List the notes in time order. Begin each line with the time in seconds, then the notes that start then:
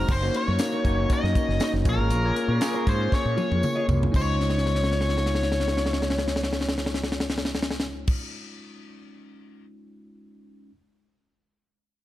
Already playing: G#3 C4 D#4 F#4 G#4 A#4 C5
0.08 F#1 D#4 A#4 C5 C#5, kick, crash
0.22 A#3 C#4 D#4 F#4 C#5, muted clean electric guitar stroke
0.34 C#5, muted clean electric guitar stroke, closed hi-hat
0.47 F#2 D#4 A#4 C#5
0.59 A#3 C#4 D#4 F#4 C#5, muted clean electric guitar stroke, snare, closed hi-hat, tambourine
0.72 D#4 A#4 C#5
0.84 F#1 A#3 C#4 D#4 F#4 A#4 C#5, kick, closed hi-hat, tambourine
0.99 muted clean electric guitar stroke
1.10 A#3 C#4 D#4 F#4 C#5 D#5, muted clean electric guitar stroke, muted fretless electric bass stroke, kick, closed hi-hat, tambourine
1.23 F#2 D#4 A#4 D#5, snare
1.35 D#4 A#4 C#5, kick, closed hi-hat, tambourine
1.48 F#1, muted clean electric guitar stroke, snare
1.59 D#4 A#4 C#5, snare, closed hi-hat, tambourine
1.64 D#5
1.74 F#1, muted clean electric guitar stroke, snare
1.85 A#1 A#3 C#4 F4 G#4 C#5, muted clean electric guitar stroke, kick, closed hi-hat, tambourine
1.89 A#4
1.98 G#1 F4 G#4 C#5
2.09 A#1 F4 G#4 C#5, closed hi-hat, tambourine
2.24 A#3 C#4 F4 G#4 C#5, muted clean electric guitar stroke
2.36 muted clean electric guitar stroke, closed hi-hat, tambourine
2.48 A#2 F4 G#4 C#5
2.61 A#3 C#4 F4 G#4 C#5, snare, closed hi-hat, tambourine
2.74 F4 G#4 C#5
2.86 G#2 A#3 C#4 F4 G#4 C5 C#5, kick, closed hi-hat, tambourine
3.00 muted clean electric guitar stroke
3.12 A#3 C#4 F4 G#4 C#5, muted fretless electric bass stroke, muted clean electric guitar stroke, kick, snare, tambourine
3.26 A#2, muted clean electric guitar stroke
3.37 F4 G#4 C#5, high tom, tambourine
3.50 F2 F4 G#4 C#5, high tom
3.63 mid tom, tambourine
3.76 F4 G#4 D#5
3.87 C2 F4 G#4 C#5, floor tom, tambourine
4.01 muted clean electric guitar stroke, floor tom
4.12 C#2 G#3 C#4 D#4 F4, kick, crash, tambourine
4.16 C5 C#5 D#5
4.40 snare
4.50 snare
4.58 snare
4.66 snare
4.75 snare
4.84 snare
4.92 snare
5.01 snare
5.09 snare
5.17 snare
5.26 snare
5.35 snare
5.43 snare
5.52 snare
5.60 snare
5.68 snare
5.77 snare
5.86 snare
5.93 snare
6.02 snare
6.10 snare
6.18 snare
6.28 snare
6.36 snare
6.43 snare
6.53 snare
6.61 snare
6.69 snare
6.78 snare
6.86 snare
6.94 snare
7.04 snare
7.12 snare
7.20 snare
7.30 snare
7.38 snare
7.45 snare
7.55 snare
7.62 snare
7.71 snare
7.80 snare
8.07 kick, crash